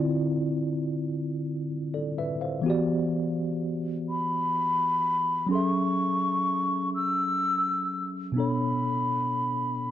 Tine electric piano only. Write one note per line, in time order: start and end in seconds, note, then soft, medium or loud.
0.00 2.59 D3 medium
0.00 2.60 C4 medium
0.00 2.61 E4 medium
0.00 2.62 F4 medium
0.00 1.68 D5 medium
1.94 2.16 A4 soft
1.94 2.16 D5 medium
2.18 2.40 B4 medium
2.18 2.40 E5 medium
2.41 2.87 C5 soft
2.41 2.86 F5 medium
2.62 5.45 E3 medium
2.62 5.46 B3 medium
2.66 5.47 F#4 medium
2.66 5.48 G4 medium
2.66 5.49 D5 medium
5.46 8.30 F#3 medium
5.46 8.31 C#4 medium
5.51 8.32 G#4 soft
5.51 8.33 A4 medium
5.55 8.34 E5 medium
8.32 9.91 B2 medium
8.32 9.91 B3 medium
8.37 9.91 D4 medium
8.37 9.91 A4 medium
8.37 9.91 C#5 medium